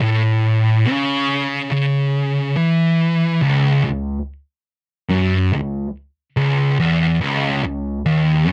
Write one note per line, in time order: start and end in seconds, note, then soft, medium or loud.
0.01 0.85 A2 loud
0.85 1.70 C#3 loud
1.71 2.55 C#3 loud
2.56 3.40 E3 loud
3.42 3.83 C#2 loud
3.84 4.18 C#2 medium
5.10 5.52 F#2 loud
5.53 5.87 C#2 medium
6.37 6.78 C#2 loud
6.80 7.21 E2 loud
7.21 7.63 C#2 loud
7.64 7.98 C#2 medium
8.06 8.47 D#2 loud
8.47 8.52 F#2 loud